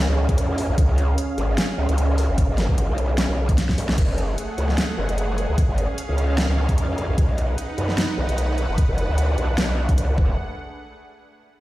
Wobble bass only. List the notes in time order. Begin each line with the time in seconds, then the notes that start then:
0.09 C#2
0.29 F2
0.69 B1
0.78 C#2
1.38 G#1
1.78 C#2
1.89 C#2
2.29 G#1
2.49 G#1
2.69 G#1
2.89 B1
3.29 B1
3.78 B1
3.98 F#1
4.58 C#2
4.98 F#1
5.09 F#1
5.49 C#2
5.69 G#1
6.09 C#2
6.49 C#2
6.69 F2
7.09 B1
7.18 B1
7.78 F#2
8.18 B1
8.29 B1
8.69 F#1
8.89 F#1
9.09 D2
9.38 B1
9.58 B1
9.98 C#2
10.18 F#1